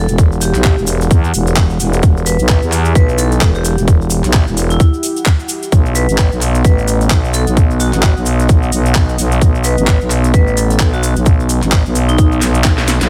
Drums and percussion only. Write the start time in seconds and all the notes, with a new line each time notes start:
0.08 closed hi-hat, cabasa
0.18 kick, closed hi-hat, cabasa
0.32 cabasa
0.41 open hi-hat, cabasa
0.55 clap, closed hi-hat, cabasa
0.64 kick, clap, closed hi-hat, cabasa
0.78 cabasa
0.87 open hi-hat, cabasa
1.01 closed hi-hat, cabasa
1.11 kick, closed hi-hat, cabasa
1.24 cabasa
1.34 open hi-hat, cabasa
1.47 closed hi-hat, cabasa
1.56 kick, clap, closed hi-hat, cabasa
1.70 cabasa
1.80 open hi-hat, cabasa
1.93 closed hi-hat, cabasa
2.03 kick, closed hi-hat, cabasa
2.17 cabasa
2.26 open hi-hat, cabasa
2.39 closed hi-hat, cabasa
2.49 kick, clap, cabasa
2.62 cabasa
2.72 clap, open hi-hat, cabasa
2.85 closed hi-hat, cabasa
2.95 kick, closed hi-hat, cabasa
3.09 cabasa
3.18 open hi-hat, cabasa
3.32 closed hi-hat, cabasa
3.41 kick, clap, closed hi-hat, cabasa
3.55 cabasa
3.65 open hi-hat, cabasa
3.78 closed hi-hat, cabasa
3.88 kick, closed hi-hat, cabasa
4.01 cabasa
4.10 open hi-hat, cabasa
4.24 clap, closed hi-hat, cabasa
4.33 kick, clap, closed hi-hat, cabasa
4.47 cabasa
4.57 open hi-hat, cabasa
4.70 closed hi-hat, cabasa
4.80 kick, closed hi-hat, cabasa
4.94 cabasa
5.03 open hi-hat, cabasa
5.16 closed hi-hat, cabasa
5.26 kick, clap, closed hi-hat, cabasa
5.40 cabasa
5.49 open hi-hat, cabasa
5.63 closed hi-hat, cabasa
5.72 kick, closed hi-hat, cabasa
5.86 cabasa
5.95 open hi-hat, cabasa
6.09 closed hi-hat, cabasa
6.18 kick, clap, cabasa
6.32 cabasa
6.41 clap, open hi-hat, cabasa
6.55 closed hi-hat, cabasa
6.65 kick, closed hi-hat, cabasa
6.78 cabasa
6.88 open hi-hat, cabasa
7.01 closed hi-hat, cabasa
7.10 kick, clap, closed hi-hat, cabasa
7.24 cabasa
7.34 open hi-hat, cabasa
7.47 closed hi-hat, cabasa
7.57 kick, closed hi-hat, cabasa
7.71 cabasa
7.80 open hi-hat, cabasa
7.93 clap, closed hi-hat, cabasa
8.03 kick, clap, closed hi-hat, cabasa
8.17 cabasa
8.26 open hi-hat, cabasa
8.40 closed hi-hat, cabasa
8.49 kick, closed hi-hat, cabasa
8.63 cabasa
8.72 open hi-hat, cabasa
8.86 closed hi-hat, cabasa
8.95 kick, clap, closed hi-hat, cabasa
9.09 cabasa
9.18 open hi-hat, cabasa
9.32 closed hi-hat, cabasa
9.41 kick, closed hi-hat, cabasa
9.55 cabasa
9.64 open hi-hat, cabasa
9.78 closed hi-hat, cabasa
9.87 kick, clap, cabasa
10.01 cabasa
10.10 clap, open hi-hat, cabasa
10.24 closed hi-hat, cabasa
10.34 kick, closed hi-hat, cabasa
10.47 cabasa
10.57 open hi-hat, cabasa
10.70 closed hi-hat, cabasa
10.80 kick, clap, closed hi-hat, cabasa
10.93 cabasa
11.03 open hi-hat, cabasa
11.16 closed hi-hat, cabasa
11.26 kick, closed hi-hat, cabasa
11.40 cabasa
11.49 open hi-hat, cabasa
11.62 clap, closed hi-hat, cabasa
11.72 kick, clap, closed hi-hat, cabasa
11.86 cabasa
11.95 open hi-hat, cabasa
12.09 closed hi-hat, cabasa
12.18 kick, closed hi-hat, cabasa
12.32 cabasa
12.41 snare, open hi-hat, cabasa
12.54 closed hi-hat, cabasa
12.64 kick, snare, clap, closed hi-hat, cabasa
12.78 snare, cabasa
12.88 snare, open hi-hat, cabasa
13.01 snare, closed hi-hat, cabasa